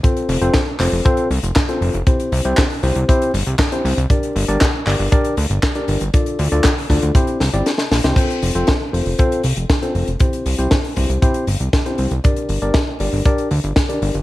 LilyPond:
<<
  \new Staff \with { instrumentName = "Tine electric piano" } { \time 4/4 \key f \major \tempo 4 = 118 <c' f' a' c''>8. <c' f' a' c''>16 r8 <c' f' a' c''>8 <c' f' a' c''>8 r8. <c' f' a' c''>8 r16 | <c' e' g' c''>8. <c' e' g' c''>16 r8 <c' e' g' c''>8 <c' e' g' c''>8 r8. <c' e' g' c''>8 r16 | <d' g' bes' d''>8. <d' g' bes' d''>16 r8 <d' g' bes' d''>8 <d' g' bes' d''>8 r8. <d' g' bes' d''>8 r16 | <d' f' a' d''>8. <d' f' a' d''>16 r8 <d' f' a' d''>8 <c' e' g' c''>8 r16 <c' e' g' d''>16 r8. <c' e' g' c''>16 |
<c' f' a' c''>8. <c' f' a' c''>16 r8 <c' f' a' c''>8 <c' f' a' c''>8 r8. <c' f' a' c''>8 r16 | <c' e' g' c''>8. <c' e' g' c''>16 r8 <c' e' g' c''>8 <c' e' g' c''>8 r8. <c' e' g' c''>8 r16 | <d' g' bes' d''>8. <d' g' bes' d''>16 r8 <d' g' bes' d''>8 <d' g' bes' d''>8 r8. <d' g' bes' d''>8 r16 | }
  \new Staff \with { instrumentName = "Analog synth bass" } { \clef bass \time 4/4 \key f \major r8 f,,16 f,,16 r8 f,,16 f,,16 r8 c,16 f,,16 r8 f,,16 f,,16 | r8 c,16 c,16 r8 c,16 c,16 r8 g,,16 c,16 r8 c,16 c,16 | r8 g,,16 g,,16 r8 g,,16 g,,16 r8 d,16 g,,16 r8 g,,16 g,,16 | r8 d,16 d,16 r8 d,16 d,16 r8 c,16 g,,16 r8 bes,,16 c,16 |
r8 f,,16 f,,16 r8 f,,16 f,,16 r8 c,16 f,,16 r8 f,,16 f,,16 | r8 c,16 c,16 r8 c,16 c,16 r8 g,,16 c,16 r8 c,16 c,16 | r8 g,,16 g,,16 r8 g,,16 g,,16 r8 d,16 g,,16 r8 g,,16 g,,16 | }
  \new DrumStaff \with { instrumentName = "Drums" } \drummode { \time 4/4 <hh bd>16 hh16 hho16 hh16 <hc hh bd sn>8 <hc hho>16 hho16 <hh bd>16 hh16 hho16 hh16 <hc hh bd sn>16 hh16 hho16 hh16 | <hh bd>16 hh16 hho16 hh16 <hc hh bd sn>16 hho16 hho16 hh16 <hh bd>16 hh16 hho16 hh16 <hc hh bd sn>16 hh16 hho16 hh16 | <hh bd>16 hh16 hho16 hh16 <hc hh bd sn>8 <hc hho>16 hho16 <hh bd>16 hh16 hho16 hh16 <hc hh bd sn>16 hh16 hho16 hh16 | <hh bd>16 hh16 hho16 hh16 <hc hh bd sn>16 hho16 <hho bd>16 hh16 <hh bd>16 hh16 <hho sn>16 hh16 <hh sn>16 <hh sn>16 <hho sn>16 <hh sn>16 |
<cymc hh bd>16 hh16 hho16 hh16 <hh bd sn>8 hho16 hho16 <hh bd>16 hh16 hho16 hh16 <hh bd sn>16 hh16 hho16 hh16 | <hh bd>16 hh16 hho16 hh16 <hh bd sn>16 hho16 <hho bd>16 hh16 <hh bd>16 hh16 hho16 hh16 <hh bd sn>16 hh16 hho16 hh16 | <hh bd>16 hh16 hho16 hh16 <hh bd sn>8 hho16 hho16 <hh bd>16 hh16 hho16 hh16 <hh bd sn>16 hh16 hho16 hh16 | }
>>